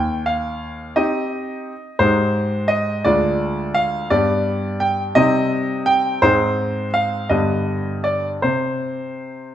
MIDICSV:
0, 0, Header, 1, 2, 480
1, 0, Start_track
1, 0, Key_signature, -3, "minor"
1, 0, Tempo, 700117
1, 1371, Time_signature, 6, 3, 24, 8
1, 4260, Tempo, 732601
1, 5220, Tempo, 757576
1, 6404, End_track
2, 0, Start_track
2, 0, Title_t, "Grand piano"
2, 0, Program_c, 0, 0
2, 0, Note_on_c, 0, 39, 54
2, 0, Note_on_c, 0, 79, 64
2, 178, Note_off_c, 0, 79, 0
2, 178, Note_on_c, 0, 77, 71
2, 635, Note_off_c, 0, 39, 0
2, 655, Note_off_c, 0, 77, 0
2, 658, Note_on_c, 0, 75, 71
2, 661, Note_on_c, 0, 63, 42
2, 662, Note_on_c, 0, 67, 48
2, 663, Note_on_c, 0, 60, 41
2, 1175, Note_off_c, 0, 63, 0
2, 1176, Note_off_c, 0, 60, 0
2, 1176, Note_off_c, 0, 67, 0
2, 1346, Note_off_c, 0, 75, 0
2, 1365, Note_on_c, 0, 72, 80
2, 1367, Note_on_c, 0, 44, 61
2, 1369, Note_on_c, 0, 56, 42
2, 1373, Note_on_c, 0, 63, 40
2, 1377, Note_on_c, 0, 67, 41
2, 1837, Note_on_c, 0, 75, 79
2, 1842, Note_off_c, 0, 72, 0
2, 2057, Note_off_c, 0, 56, 0
2, 2058, Note_off_c, 0, 63, 0
2, 2060, Note_off_c, 0, 67, 0
2, 2062, Note_off_c, 0, 44, 0
2, 2081, Note_off_c, 0, 75, 0
2, 2088, Note_on_c, 0, 74, 83
2, 2091, Note_on_c, 0, 38, 54
2, 2091, Note_on_c, 0, 56, 44
2, 2095, Note_on_c, 0, 62, 44
2, 2100, Note_on_c, 0, 65, 43
2, 2567, Note_on_c, 0, 77, 84
2, 2569, Note_off_c, 0, 74, 0
2, 2782, Note_off_c, 0, 56, 0
2, 2782, Note_off_c, 0, 77, 0
2, 2784, Note_off_c, 0, 62, 0
2, 2786, Note_off_c, 0, 65, 0
2, 2788, Note_off_c, 0, 38, 0
2, 2814, Note_on_c, 0, 55, 43
2, 2814, Note_on_c, 0, 74, 80
2, 2815, Note_on_c, 0, 43, 59
2, 2820, Note_on_c, 0, 59, 43
2, 2824, Note_on_c, 0, 67, 45
2, 3288, Note_off_c, 0, 74, 0
2, 3292, Note_on_c, 0, 79, 78
2, 3435, Note_off_c, 0, 79, 0
2, 3503, Note_off_c, 0, 55, 0
2, 3506, Note_off_c, 0, 59, 0
2, 3508, Note_off_c, 0, 67, 0
2, 3510, Note_off_c, 0, 43, 0
2, 3532, Note_on_c, 0, 75, 91
2, 3533, Note_on_c, 0, 55, 43
2, 3535, Note_on_c, 0, 48, 64
2, 3540, Note_on_c, 0, 60, 45
2, 3542, Note_on_c, 0, 63, 42
2, 4017, Note_off_c, 0, 75, 0
2, 4017, Note_on_c, 0, 79, 89
2, 4233, Note_off_c, 0, 55, 0
2, 4236, Note_off_c, 0, 60, 0
2, 4238, Note_off_c, 0, 63, 0
2, 4240, Note_off_c, 0, 48, 0
2, 4259, Note_off_c, 0, 79, 0
2, 4264, Note_on_c, 0, 72, 88
2, 4265, Note_on_c, 0, 44, 59
2, 4265, Note_on_c, 0, 56, 43
2, 4271, Note_on_c, 0, 60, 44
2, 4271, Note_on_c, 0, 63, 43
2, 4708, Note_off_c, 0, 72, 0
2, 4734, Note_on_c, 0, 77, 82
2, 4951, Note_off_c, 0, 56, 0
2, 4951, Note_off_c, 0, 77, 0
2, 4954, Note_off_c, 0, 60, 0
2, 4954, Note_off_c, 0, 63, 0
2, 4956, Note_off_c, 0, 44, 0
2, 4968, Note_on_c, 0, 75, 62
2, 4972, Note_on_c, 0, 43, 58
2, 4972, Note_on_c, 0, 50, 40
2, 4975, Note_on_c, 0, 59, 41
2, 4980, Note_on_c, 0, 67, 38
2, 5429, Note_off_c, 0, 75, 0
2, 5448, Note_on_c, 0, 74, 70
2, 5595, Note_off_c, 0, 74, 0
2, 5673, Note_off_c, 0, 50, 0
2, 5674, Note_off_c, 0, 59, 0
2, 5677, Note_off_c, 0, 43, 0
2, 5677, Note_off_c, 0, 67, 0
2, 5692, Note_on_c, 0, 72, 65
2, 5698, Note_on_c, 0, 48, 45
2, 6395, Note_off_c, 0, 48, 0
2, 6404, Note_off_c, 0, 72, 0
2, 6404, End_track
0, 0, End_of_file